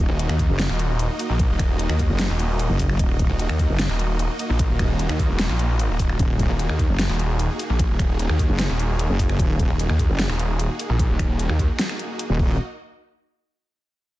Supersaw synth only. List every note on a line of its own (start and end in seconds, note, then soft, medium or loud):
0.00 12.35 A#3 medium
0.00 12.35 D#4 medium
0.00 12.35 F#4 medium
0.00 6.17 D#5 medium
6.19 12.35 G#4 medium
12.39 12.58 A#3 medium
12.39 12.58 D#4 medium
12.39 12.58 F#4 medium
12.39 12.58 D#5 medium